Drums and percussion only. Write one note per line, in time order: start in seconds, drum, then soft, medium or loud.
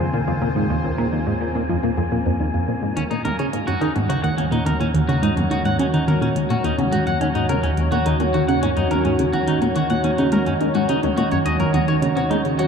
2.97 closed hi-hat medium
2.97 high tom soft
3.11 closed hi-hat soft
3.25 closed hi-hat medium
3.25 high tom medium
3.39 closed hi-hat soft
3.53 closed hi-hat medium
3.68 closed hi-hat soft
3.68 high tom soft
3.82 closed hi-hat soft
3.96 closed hi-hat soft
3.96 high tom medium
4.10 closed hi-hat medium
4.24 closed hi-hat soft
4.38 closed hi-hat medium
4.38 high tom soft
4.52 closed hi-hat soft
4.67 closed hi-hat medium
4.67 high tom medium
4.81 closed hi-hat soft
4.95 closed hi-hat medium
5.09 closed hi-hat soft
5.09 high tom soft
5.23 closed hi-hat medium
5.37 closed hi-hat soft
5.37 high tom medium
5.51 closed hi-hat medium
5.65 closed hi-hat soft
5.79 closed hi-hat medium
5.79 high tom soft
5.94 closed hi-hat soft
6.08 closed hi-hat soft
6.08 high tom medium
6.22 closed hi-hat soft
6.36 closed hi-hat medium
6.50 closed hi-hat soft
6.50 high tom soft
6.64 closed hi-hat medium
6.79 closed hi-hat soft
6.79 high tom medium
6.93 closed hi-hat medium
7.07 closed hi-hat soft
7.21 closed hi-hat medium
7.21 high tom soft
7.35 closed hi-hat soft
7.49 closed hi-hat medium
7.49 high tom medium
7.64 closed hi-hat soft
7.77 closed hi-hat medium
7.92 closed hi-hat soft
7.92 high tom soft
8.06 closed hi-hat medium
8.20 closed hi-hat soft
8.20 high tom medium
8.34 closed hi-hat soft
8.49 closed hi-hat soft
8.63 closed hi-hat medium
8.63 high tom soft
8.77 closed hi-hat soft
8.91 closed hi-hat medium
8.91 high tom medium
9.05 closed hi-hat soft
9.19 closed hi-hat medium
9.33 closed hi-hat soft
9.33 high tom soft
9.47 closed hi-hat medium
9.62 closed hi-hat soft
9.62 high tom medium
9.76 closed hi-hat medium
9.90 closed hi-hat soft
10.04 closed hi-hat medium
10.04 high tom soft
10.18 closed hi-hat soft
10.32 closed hi-hat medium
10.32 high tom medium
10.46 closed hi-hat soft
10.61 closed hi-hat soft
10.75 closed hi-hat soft
10.75 high tom soft
10.89 closed hi-hat medium
11.03 closed hi-hat soft
11.03 high tom medium
11.17 closed hi-hat medium
11.31 closed hi-hat soft
11.46 closed hi-hat medium
11.46 high tom soft
11.60 closed hi-hat soft
11.74 closed hi-hat medium
11.74 high tom medium
11.88 closed hi-hat soft
12.02 closed hi-hat medium
12.02 high tom soft
12.17 closed hi-hat soft
12.31 closed hi-hat medium
12.31 high tom medium
12.45 closed hi-hat soft
12.59 closed hi-hat medium